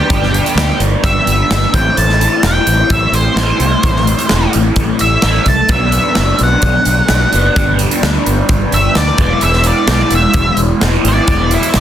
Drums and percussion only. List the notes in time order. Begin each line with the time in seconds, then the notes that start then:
0.10 kick, closed hi-hat
0.23 snare
0.34 closed hi-hat
0.46 closed hi-hat
0.58 snare, closed hi-hat
0.80 closed hi-hat
1.04 kick, closed hi-hat
1.27 closed hi-hat
1.51 snare, closed hi-hat
1.74 kick, closed hi-hat
1.97 closed hi-hat
2.09 snare
2.21 closed hi-hat
2.43 snare, closed hi-hat
2.67 closed hi-hat
2.90 kick, closed hi-hat
3.14 closed hi-hat
3.37 snare, closed hi-hat
3.60 closed hi-hat
3.83 kick, closed hi-hat
3.96 snare
4.07 closed hi-hat
4.19 closed hi-hat
4.29 snare, closed hi-hat
4.53 closed hi-hat
4.76 kick, closed hi-hat
4.99 closed hi-hat
5.22 snare, closed hi-hat
5.46 kick, closed hi-hat
5.69 kick, closed hi-hat
5.92 closed hi-hat
6.15 snare, closed hi-hat
6.39 closed hi-hat
6.62 kick, closed hi-hat
6.85 closed hi-hat
7.08 snare, closed hi-hat
7.33 closed hi-hat
7.56 kick, closed hi-hat
7.79 closed hi-hat
7.91 closed hi-hat
8.03 snare, closed hi-hat
8.26 closed hi-hat
8.49 kick, closed hi-hat
8.72 closed hi-hat
8.95 snare, closed hi-hat
9.18 kick, closed hi-hat
9.41 closed hi-hat
9.53 snare
9.64 closed hi-hat
9.87 snare, closed hi-hat
10.11 closed hi-hat
10.33 kick, closed hi-hat
10.57 closed hi-hat
10.81 snare, closed hi-hat
11.05 closed hi-hat
11.28 kick, closed hi-hat
11.51 closed hi-hat
11.63 closed hi-hat
11.74 snare, closed hi-hat